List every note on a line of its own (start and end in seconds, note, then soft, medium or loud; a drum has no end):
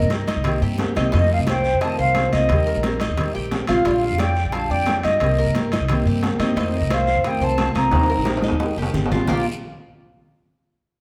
0.00 0.35 G2 medium
0.00 0.11 C3 medium
0.00 0.10 C4 medium
0.00 0.11 G4 medium
0.00 0.27 A#4 medium
0.00 0.11 D#5 medium
0.10 0.26 D#3 medium
0.10 0.27 A#3 soft
0.10 0.27 C4 medium
0.10 0.27 G4 medium
0.10 high bongo medium
0.10 high conga medium
0.10 high timbale medium
0.10 low timbale medium
0.10 short guiro medium
0.27 0.61 D#4 medium
0.27 muted nylon-string guitar stroke medium
0.27 high bongo soft
0.27 high conga medium
0.27 high timbale medium
0.27 short guiro medium
0.36 0.61 C2 medium
0.44 0.79 C3 medium
0.44 0.78 D#3 medium
0.44 0.78 A#3 medium
0.44 0.79 C4 medium
0.44 0.80 G4 medium
0.44 high bongo medium
0.44 high conga soft
0.44 low conga medium
0.44 high timbale medium
0.44 long guiro medium
0.62 0.94 G2 medium
0.62 0.95 G4 medium
0.62 high conga soft
0.78 0.96 D#3 soft
0.78 0.96 A#3 medium
0.78 0.96 C4 medium
0.78 0.95 G4 medium
0.78 high bongo soft
0.78 low bongo medium
0.78 high conga medium
0.78 high timbale medium
0.78 low timbale medium
0.78 short guiro medium
0.95 1.13 C2 medium
0.95 1.13 D#3 medium
0.95 1.13 A#3 medium
0.95 1.13 C4 medium
0.95 1.12 D#4 medium
0.95 1.12 G4 medium
0.95 high bongo soft
0.95 high conga medium
0.95 high timbale medium
0.95 short guiro medium
1.12 1.38 F2 loud
1.12 1.47 C3 medium
1.12 1.47 D#3 medium
1.12 1.47 A3 medium
1.12 1.47 C4 medium
1.12 1.46 D#4 medium
1.12 1.48 F4 medium
1.12 high bongo medium
1.12 high conga soft
1.12 high timbale medium
1.12 long guiro medium
1.16 1.31 D#5 medium
1.29 1.39 F5 medium
1.29 high bongo soft
1.29 high conga soft
1.39 1.71 C2 medium
1.47 1.64 D#3 soft
1.47 1.64 A3 medium
1.47 1.65 C4 medium
1.47 1.64 F4 medium
1.47 1.81 C5 medium
1.47 1.84 G5 loud
1.47 high bongo medium
1.47 high conga medium
1.47 high timbale medium
1.47 low timbale medium
1.47 short guiro medium
1.64 muted nylon-string guitar stroke medium
1.64 high bongo soft
1.64 high conga soft
1.64 short guiro medium
1.74 1.98 F2 medium
1.81 2.15 C3 medium
1.81 2.16 D#3 medium
1.81 2.16 A3 medium
1.81 2.16 C4 medium
1.81 2.16 F4 medium
1.81 1.98 D#5 medium
1.81 1.98 A5 loud
1.81 high bongo medium
1.81 high conga soft
1.81 high timbale medium
1.81 long guiro medium
1.99 2.31 C2 medium
1.99 2.32 C5 medium
1.99 2.34 F5 loud
1.99 high conga soft
2.15 2.33 D#3 medium
2.15 2.33 A3 soft
2.15 2.33 C4 medium
2.15 high bongo soft
2.15 low bongo medium
2.15 high conga medium
2.15 high timbale medium
2.15 low timbale medium
2.15 short guiro medium
2.19 2.32 F4 medium
2.33 2.49 C2 medium
2.33 2.49 D#3 medium
2.33 2.50 A3 medium
2.33 2.50 C4 medium
2.33 2.49 F4 medium
2.33 2.84 D#5 medium
2.33 2.66 D#5 medium
2.33 high bongo soft
2.33 high conga medium
2.33 high timbale medium
2.33 short guiro medium
2.49 2.74 D#2 loud
2.49 2.83 D#3 medium
2.49 2.83 G3 medium
2.49 2.84 C4 medium
2.49 2.84 G4 medium
2.49 high bongo medium
2.49 high conga soft
2.49 high timbale medium
2.49 long guiro medium
2.67 3.00 A#4 medium
2.67 high bongo soft
2.67 high conga soft
2.75 3.08 A#1 medium
2.83 3.00 D#3 medium
2.83 3.00 G3 medium
2.83 3.01 C4 medium
2.83 3.01 G4 medium
2.83 high bongo medium
2.83 high conga medium
2.83 high timbale medium
2.83 low timbale medium
2.83 short guiro medium
3.00 3.33 D#4 medium
3.00 muted nylon-string guitar stroke medium
3.00 high bongo soft
3.00 high conga medium
3.00 high timbale medium
3.00 short guiro medium
3.09 3.33 D#2 medium
3.17 3.50 D#3 medium
3.17 3.51 G3 medium
3.17 3.51 C4 medium
3.17 3.52 G4 medium
3.17 high bongo medium
3.17 high conga soft
3.17 low conga medium
3.17 high timbale medium
3.17 long guiro medium
3.35 3.67 A#1 medium
3.35 3.67 G4 medium
3.35 high conga soft
3.51 3.67 D#3 medium
3.51 3.68 G3 medium
3.51 3.67 C4 medium
3.51 3.66 G4 medium
3.51 high bongo soft
3.51 low bongo medium
3.51 high conga medium
3.51 high timbale medium
3.51 low timbale medium
3.51 short guiro medium
3.67 3.85 A#1 medium
3.67 3.84 G3 medium
3.67 3.85 C4 medium
3.67 3.84 F4 medium
3.67 3.84 G4 medium
3.67 high bongo soft
3.67 high conga medium
3.67 high timbale medium
3.67 short guiro medium
3.85 4.10 A#1 loud
3.85 4.17 D3 medium
3.85 4.18 G3 medium
3.85 4.19 D4 medium
3.85 4.18 F4 medium
3.85 4.19 F4 medium
3.85 3.92 D5 medium
3.85 high bongo medium
3.85 high conga soft
3.85 high timbale medium
3.85 long guiro medium
4.03 4.21 F5 medium
4.03 high bongo soft
4.03 high conga soft
4.12 4.44 F2 medium
4.18 4.34 D3 soft
4.18 4.35 G3 medium
4.18 4.35 D4 medium
4.18 4.36 F4 medium
4.18 4.52 D5 medium
4.18 4.54 G5 loud
4.18 high bongo medium
4.18 high conga loud
4.18 high timbale medium
4.18 low timbale medium
4.18 short guiro medium
4.35 muted nylon-string guitar stroke medium
4.35 high bongo soft
4.35 high conga soft
4.35 short guiro medium
4.45 4.69 A#1 medium
4.52 4.85 D3 medium
4.52 4.87 G3 medium
4.52 4.87 D4 medium
4.52 4.87 F4 medium
4.52 4.70 F5 medium
4.52 4.71 A5 loud
4.52 high bongo medium
4.52 high conga soft
4.52 high timbale medium
4.52 long guiro medium
4.69 5.02 F2 medium
4.69 5.04 D5 medium
4.69 5.05 G5 loud
4.69 high conga soft
4.86 5.03 D3 soft
4.86 5.04 G3 soft
4.86 5.04 D4 medium
4.86 5.03 F4 medium
4.86 high bongo soft
4.86 low bongo medium
4.86 high conga medium
4.86 high timbale medium
4.86 low timbale medium
4.86 short guiro medium
5.03 5.20 G2 medium
5.03 5.21 G3 medium
5.03 5.21 D4 medium
5.03 5.20 F4 medium
5.03 5.55 D#5 medium
5.03 5.37 D#5 medium
5.03 high bongo soft
5.03 high conga medium
5.03 high timbale medium
5.03 short guiro medium
5.20 5.45 C2 loud
5.20 5.54 C3 medium
5.20 5.54 D#3 medium
5.20 5.54 A#3 medium
5.20 5.55 C4 medium
5.20 5.55 G4 medium
5.20 high bongo medium
5.20 high conga soft
5.20 high timbale medium
5.20 long guiro medium
5.38 5.71 A#4 medium
5.38 high bongo soft
5.38 high conga soft
5.46 5.79 G2 medium
5.55 5.71 D#3 soft
5.55 5.72 A#3 soft
5.55 5.72 C4 medium
5.55 5.72 G4 medium
5.55 high bongo medium
5.55 high conga medium
5.55 high timbale medium
5.55 low timbale medium
5.55 short guiro medium
5.72 6.05 D#4 medium
5.72 high bongo soft
5.72 high conga loud
5.72 high timbale medium
5.72 short guiro medium
5.80 6.05 C2 medium
5.88 6.23 C3 medium
5.88 6.22 D#3 medium
5.88 6.23 A#3 medium
5.88 6.23 C4 medium
5.88 6.24 G4 medium
5.88 high bongo medium
5.88 high conga soft
5.88 low conga medium
5.88 high timbale medium
5.88 long guiro medium
6.05 6.38 G2 medium
6.05 6.39 G4 medium
6.05 high conga soft
6.23 6.40 D#3 medium
6.23 6.40 A#3 medium
6.23 6.40 C4 medium
6.23 6.40 G4 medium
6.23 high bongo soft
6.23 low bongo medium
6.23 high conga medium
6.23 high timbale medium
6.23 low timbale medium
6.23 short guiro medium
6.39 6.55 G2 medium
6.39 6.57 A#3 medium
6.39 6.57 C4 medium
6.39 6.55 D#4 medium
6.39 6.57 G4 medium
6.39 high bongo soft
6.39 high conga medium
6.39 high timbale medium
6.39 short guiro medium
6.43 6.57 D#3 medium
6.56 6.81 F2 loud
6.56 6.90 C3 medium
6.56 6.90 D#3 medium
6.56 6.91 A3 medium
6.56 6.91 C4 medium
6.56 6.90 D#4 medium
6.56 6.91 F4 medium
6.56 6.78 C5 medium
6.56 high bongo medium
6.56 high conga soft
6.56 high timbale medium
6.56 long guiro medium
6.74 6.95 D#5 medium
6.74 high bongo soft
6.74 high conga soft
6.81 7.14 C2 loud
6.90 7.07 D#3 soft
6.90 7.07 A3 soft
6.90 7.07 C4 medium
6.90 7.07 F4 medium
6.90 7.24 C5 medium
6.90 7.28 F5 medium
6.90 high bongo medium
6.90 high conga medium
6.90 high timbale loud
6.90 low timbale medium
6.90 short guiro medium
7.07 muted nylon-string guitar stroke medium
7.07 high bongo soft
7.07 high conga soft
7.07 short guiro medium
7.15 7.40 F2 medium
7.24 7.58 C3 medium
7.24 7.57 D#3 medium
7.24 7.58 A3 medium
7.24 7.59 C4 medium
7.24 7.59 F4 medium
7.24 7.41 D#5 medium
7.24 7.45 G5 loud
7.24 high bongo medium
7.24 high conga soft
7.24 high timbale medium
7.24 long guiro medium
7.40 7.73 C2 medium
7.40 7.75 C5 medium
7.40 7.79 A5 loud
7.40 high conga soft
7.58 7.75 D#3 soft
7.58 7.75 A3 medium
7.58 7.76 C4 medium
7.58 7.75 F4 medium
7.58 high bongo soft
7.58 low bongo medium
7.58 high conga medium
7.58 high timbale medium
7.58 low timbale medium
7.58 short guiro medium
7.75 7.91 C2 medium
7.75 7.93 A3 medium
7.75 7.93 C4 medium
7.75 7.92 F4 medium
7.75 8.08 D#5 medium
7.75 8.27 A#5 loud
7.75 high bongo soft
7.75 high conga medium
7.75 high timbale medium
7.75 short guiro medium
7.79 7.91 D#3 medium
7.91 8.16 D#2 loud
7.91 8.26 D#3 medium
7.91 8.26 G3 medium
7.91 8.27 C4 medium
7.91 8.27 G4 medium
7.91 high bongo medium
7.91 high conga soft
7.91 high timbale loud
7.91 long guiro medium
8.03 high timbale medium
8.08 8.43 A#4 medium
8.08 high bongo soft
8.08 high conga soft
8.17 8.50 A#1 medium
8.25 8.43 D#3 soft
8.25 8.43 G3 medium
8.25 8.43 C4 medium
8.25 8.43 G4 medium
8.25 high bongo medium
8.25 high conga medium
8.25 high timbale medium
8.25 short guiro medium
8.37 high timbale medium
8.42 8.77 D#4 medium
8.42 muted nylon-string guitar stroke medium
8.42 high bongo soft
8.42 high conga medium
8.42 short guiro medium
8.48 8.76 D#2 medium
8.48 low timbale loud
8.60 8.93 D#3 medium
8.60 8.94 G3 medium
8.60 8.95 C4 medium
8.60 8.95 G4 medium
8.60 high bongo medium
8.60 high conga medium
8.60 low timbale medium
8.60 long guiro medium
8.77 8.93 F1 medium
8.77 9.11 G4 medium
8.82 low timbale medium
8.94 9.10 G1 medium
8.94 9.11 D#3 medium
8.94 9.11 G3 soft
8.94 9.12 C4 medium
8.94 9.12 G4 medium
8.94 high bongo soft
8.94 low bongo medium
8.94 low conga loud
8.94 short guiro medium
9.06 low timbale loud
9.11 9.27 A1 medium
9.11 9.29 G3 medium
9.11 9.29 C4 medium
9.11 9.28 F4 medium
9.11 9.29 G4 medium
9.11 high bongo soft
9.11 low conga medium
9.11 short guiro medium
9.16 low timbale medium
9.27 9.44 A#1 medium
9.27 9.43 A#2 medium
9.27 9.43 D3 medium
9.27 9.43 G3 medium
9.27 9.44 A#3 medium
9.27 9.43 D4 medium
9.27 9.45 F4 medium
9.27 9.45 G4 loud
9.27 low bongo loud
9.27 low conga loud
9.27 low timbale medium
9.27 long guiro medium
9.32 9.44 F4 medium